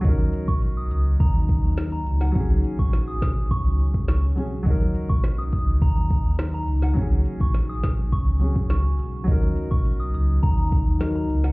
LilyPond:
<<
  \new Staff \with { instrumentName = "Synth bell" } { \time 4/4 \key ees \minor \tempo 4 = 104 r8. des'''16 r16 ees'''16 ees'''16 r16 bes''8. r8 bes''16 r16 ges''16 | r8. des'''16 r16 ees'''16 ees'''16 r16 des'''8. r16 des'''8. r16 | r8. des'''16 r16 ees'''16 ees'''16 r16 bes''8. r8 bes''16 r16 ges''16 | r8. des'''16 r16 ees'''16 ees'''16 r16 des'''8. r16 des'''8. r16 |
r8. des'''16 r16 ees'''16 ees'''16 r16 bes''8. r8 bes''16 r16 ges''16 | }
  \new Staff \with { instrumentName = "Grand piano" } { \time 4/4 \key ees \minor <ges ees' bes'>1 | <ges des' aes'>2.~ <ges des' aes'>8 <ges des' aes'>8 | <ges ees' bes'>1 | <ges des' aes'>2~ <ges des' aes'>8 <ges des' aes'>4. |
<ges ees' bes'>2. <ges ees' bes'>4 | }
  \new Staff \with { instrumentName = "Ambient pad" } { \time 4/4 \key ees \minor << { <bes ees'>1 | <aes des'>1 | <bes ees'>1 | <aes des'>1 |
<bes ees'>1 | } \\ { ges1~ | ges1~ | ges1 | ges1~ |
ges1 | } >> }
  \new Staff \with { instrumentName = "Sub bass" } { \clef bass \time 4/4 \key ees \minor ees,8 r16 ces,8. des,8 ees,8. ees,8. des,8 | des,8 r16 bes,,8. ces,8 des,8. des,8. ces,8 | ees,8 r16 ces,8. des,8 ees,8. ees,8. des,8 | des,8 r16 bes,,8. ces,8 des,8. des,8. ces,8 |
ees,8 r16 ces,8. des,8 ees,8. ees,8. des,8 | }
  \new DrumStaff \with { instrumentName = "Drums" } \drummode { \time 4/4 <hh bd>16 hh16 hh16 bd16 hh8 hh8 <hh bd>16 hh16 <hh bd>8 <hh sn>16 hh16 hh16 sn16 | <hh bd>16 hh16 hh16 bd16 <hh sn>8 <hh bd sn>8 <hh bd>16 hh16 hh16 bd16 <hh sn>16 hh16 hh8 | <hh bd>16 hh16 hh16 bd16 <hh ss sn>8 <hh bd>8 <hh bd>16 hh16 <hh bd>8 <hh ss sn>16 hh16 hh16 sn16 | <hh bd>16 hh16 hh16 bd16 <hh sn>8 <hh bd sn>8 <hh bd>16 hh16 hh16 bd16 <hh sn>16 hh16 hh8 |
<hh bd>16 hh16 hh16 bd16 hh8 hh8 <hh bd>16 hh16 <hh bd>8 <hh sn>16 hh16 hh16 sn16 | }
>>